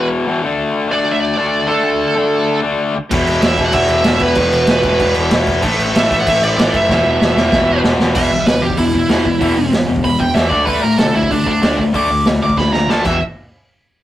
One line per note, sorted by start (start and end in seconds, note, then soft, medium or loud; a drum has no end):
0.00 0.26 E2 medium
0.00 0.27 B2 medium
0.00 0.26 E3 medium
0.27 0.42 E2 medium
0.27 0.42 B2 medium
0.27 0.43 E3 medium
0.43 0.88 D3 medium
0.43 0.90 A3 loud
0.43 0.92 D4 loud
0.89 1.36 D3 medium
0.89 1.37 A3 medium
0.89 1.36 D4 loud
0.89 1.12 D5 medium
1.12 1.20 E5 loud
1.20 1.68 D5 loud
1.37 1.67 D3 medium
1.37 1.69 A3 medium
1.37 1.68 D4 loud
1.68 2.14 D3 loud
1.68 2.16 A3 loud
1.68 2.17 D4 loud
1.68 2.59 A4 medium
2.15 2.62 D3 medium
2.15 2.63 A3 medium
2.15 2.62 D4 loud
2.63 2.96 D3 medium
2.63 2.95 A3 medium
2.63 2.94 D4 medium
3.11 3.23 E1 medium
3.11 3.60 E2 medium
3.11 3.58 B2 loud
3.11 3.56 E3 loud
3.11 kick loud
3.11 crash loud
3.27 3.39 E1 medium
3.27 crash medium
3.41 3.55 E1 medium
3.41 3.65 E5 loud
3.41 snare loud
3.41 crash loud
3.57 3.70 E1 medium
3.57 4.02 E2 medium
3.57 4.04 B2 medium
3.57 4.06 E3 medium
3.57 kick medium
3.57 crash medium
3.66 3.74 F#5 loud
3.72 3.86 E1 loud
3.72 4.33 E2 medium
3.72 4.35 B2 medium
3.72 4.37 E3 loud
3.72 4.21 E5 loud
3.72 kick loud
3.72 crash medium
3.88 4.01 E1 medium
3.88 crash medium
4.03 4.17 E1 loud
4.03 4.33 E2 medium
4.03 4.35 B2 medium
4.03 4.37 E3 medium
4.03 snare loud
4.03 crash medium
4.20 4.33 E1 loud
4.20 5.12 B4 medium
4.20 kick medium
4.20 crash medium
4.34 4.49 E1 loud
4.34 4.82 E2 loud
4.34 4.83 B2 loud
4.34 4.83 E3 loud
4.34 kick loud
4.34 crash medium
4.52 4.64 E1 loud
4.52 crash medium
4.67 4.80 E1 medium
4.67 snare loud
4.67 crash medium
4.83 4.96 E1 loud
4.83 5.29 E2 medium
4.83 5.31 B2 medium
4.83 5.33 E3 medium
4.83 kick loud
4.83 crash medium
4.98 5.11 E1 loud
4.98 5.61 E2 medium
4.98 5.61 B2 medium
4.98 5.62 E3 loud
4.98 kick loud
4.98 crash medium
5.14 5.28 E1 loud
5.14 crash medium
5.30 5.44 E1 loud
5.30 5.61 E2 medium
5.30 5.62 B2 medium
5.30 5.63 E3 loud
5.30 snare loud
5.30 crash medium
5.47 5.59 E1 loud
5.47 kick medium
5.47 crash medium
5.62 5.75 A1 medium
5.62 6.09 A2 loud
5.62 6.12 E3 loud
5.62 6.09 A3 loud
5.62 kick loud
5.62 crash loud
5.79 5.91 A1 medium
5.79 crash medium
5.95 6.06 A1 loud
5.95 6.18 E5 medium
5.95 snare loud
5.95 crash loud
6.10 6.23 A1 loud
6.10 6.56 A2 medium
6.10 6.59 E3 medium
6.10 6.56 A3 loud
6.10 kick medium
6.10 crash medium
6.20 6.27 F#5 loud
6.26 6.39 A1 loud
6.26 6.88 A2 medium
6.26 6.92 E3 medium
6.26 6.89 A3 medium
6.26 6.43 E5 loud
6.26 kick loud
6.26 crash loud
6.41 6.53 A1 medium
6.41 6.75 D5 loud
6.41 crash medium
6.57 6.69 A1 loud
6.57 6.88 A2 medium
6.57 6.91 E3 medium
6.57 6.89 A3 loud
6.57 snare loud
6.57 crash medium
6.74 6.85 F#1 loud
6.74 7.80 E5 loud
6.74 kick medium
6.74 crash medium
6.89 7.01 E1 medium
6.89 7.35 E2 loud
6.89 7.36 B2 loud
6.89 7.35 E3 loud
6.89 kick loud
6.89 snare medium
7.05 7.16 E1 medium
7.21 7.33 E1 medium
7.21 snare medium
7.36 7.49 E1 loud
7.36 7.82 E2 medium
7.36 7.83 B2 medium
7.36 7.82 E3 medium
7.36 snare medium
7.51 7.64 E1 medium
7.51 8.13 E2 medium
7.51 8.14 B2 medium
7.51 8.15 E3 medium
7.51 kick loud
7.51 snare loud
7.69 7.80 E1 medium
7.83 7.95 E1 loud
7.83 8.14 E2 medium
7.83 8.15 B2 medium
7.83 8.15 E3 medium
7.83 snare loud
7.99 8.11 E1 loud
7.99 snare medium
8.15 8.27 E1 loud
8.15 8.29 E2 medium
8.15 8.29 B2 medium
8.15 8.30 E3 loud
8.15 8.46 E5 loud
8.15 kick loud
8.15 crash loud
8.30 8.42 B1 medium
8.30 8.45 E2 medium
8.30 8.45 B2 medium
8.46 8.58 D2 medium
8.46 8.61 E2 medium
8.46 8.61 B2 loud
8.46 8.62 B4 medium
8.46 snare loud
8.46 open hi-hat medium
8.62 8.74 E1 medium
8.62 8.76 E2 medium
8.62 8.77 B2 medium
8.62 8.78 G4 medium
8.70 kick medium
8.77 9.01 E1 medium
8.77 8.92 E2 medium
8.77 8.92 B2 medium
8.77 9.70 E4 loud
8.77 kick loud
8.77 open hi-hat medium
8.93 9.08 E2 medium
8.93 9.08 B2 medium
8.93 kick medium
9.09 9.21 E1 medium
9.09 9.24 E2 medium
9.09 9.24 B2 loud
9.09 9.25 E3 loud
9.09 snare loud
9.09 open hi-hat medium
9.25 9.37 E1 medium
9.25 9.39 E2 medium
9.25 9.40 B2 medium
9.25 kick medium
9.41 9.52 E1 medium
9.41 9.55 E2 medium
9.41 9.55 B2 medium
9.41 9.56 E3 loud
9.41 kick loud
9.41 open hi-hat medium
9.56 9.68 E1 medium
9.56 9.71 E2 medium
9.56 9.71 B2 medium
9.72 9.84 E1 medium
9.72 9.86 E2 medium
9.72 9.87 B2 medium
9.72 snare loud
9.72 open hi-hat medium
9.88 9.99 E1 loud
9.88 10.02 E2 medium
9.88 10.03 B2 medium
9.96 kick medium
10.04 10.16 E1 medium
10.04 10.18 E2 medium
10.04 10.18 B2 medium
10.04 10.19 B5 loud
10.04 kick loud
10.04 open hi-hat medium
10.20 10.31 E1 medium
10.20 10.33 E2 medium
10.20 10.34 B2 medium
10.20 10.34 G5 medium
10.20 kick medium
10.34 10.50 E2 loud
10.34 10.52 E2 medium
10.34 10.50 B2 medium
10.34 10.50 E3 loud
10.34 10.49 E5 loud
10.34 snare loud
10.34 open hi-hat medium
10.49 10.63 D2 medium
10.49 10.66 D3 medium
10.49 10.66 A3 loud
10.49 10.66 D4 medium
10.49 10.65 D5 loud
10.49 kick medium
10.65 10.79 D2 medium
10.65 10.81 D3 medium
10.65 10.81 A3 loud
10.65 10.82 D4 loud
10.65 10.82 B4 medium
10.65 kick medium
10.65 open hi-hat medium
10.82 10.95 A2 medium
10.82 10.96 D3 medium
10.82 10.97 A3 medium
10.82 10.98 A#4 medium
10.98 11.10 B2 medium
10.98 11.13 D3 medium
10.98 11.13 A3 medium
10.98 11.14 A4 medium
10.98 snare loud
10.98 open hi-hat medium
11.14 11.27 D2 loud
11.14 11.28 D3 medium
11.14 11.29 A3 medium
11.14 11.31 E4 medium
11.23 kick medium
11.30 11.54 D2 medium
11.30 11.44 D3 medium
11.30 11.44 A3 medium
11.30 11.46 D4 medium
11.30 kick loud
11.30 open hi-hat medium
11.46 11.60 D3 medium
11.46 11.60 A3 medium
11.46 11.77 D4 loud
11.46 kick medium
11.62 11.74 D2 medium
11.62 11.77 D3 medium
11.62 11.77 A3 medium
11.62 11.77 D4 loud
11.62 snare loud
11.62 open hi-hat medium
11.78 11.90 D2 medium
11.78 11.92 D3 medium
11.78 11.92 A3 medium
11.78 kick medium
11.93 12.05 D2 medium
11.93 12.08 D3 medium
11.93 12.08 A3 medium
11.93 12.09 D4 medium
11.93 12.25 D6 loud
11.93 kick loud
11.93 open hi-hat medium
12.10 12.21 D2 medium
12.10 12.24 D3 medium
12.10 12.24 A3 medium
12.25 12.37 D2 medium
12.25 12.40 D3 medium
12.25 12.40 A3 medium
12.25 snare loud
12.25 open hi-hat medium
12.41 12.52 D2 medium
12.41 12.56 D3 medium
12.41 12.56 A3 medium
12.41 12.57 D6 medium
12.50 kick medium
12.57 12.69 D2 medium
12.57 12.71 D3 medium
12.57 12.71 A3 medium
12.57 12.73 B5 medium
12.57 kick medium
12.57 snare medium
12.72 12.84 D2 medium
12.72 12.86 D3 medium
12.72 12.87 A3 medium
12.72 12.90 A#5 medium
12.72 snare medium
12.88 13.00 D2 medium
12.88 13.03 D3 medium
12.88 13.04 A3 loud
12.88 13.04 D4 medium
12.88 13.04 A5 loud
12.88 snare medium
13.05 13.19 E1 medium
13.05 13.17 E2 medium
13.05 13.17 B2 medium
13.05 13.17 E3 loud
13.05 13.20 E5 loud
13.05 kick loud
13.05 crash medium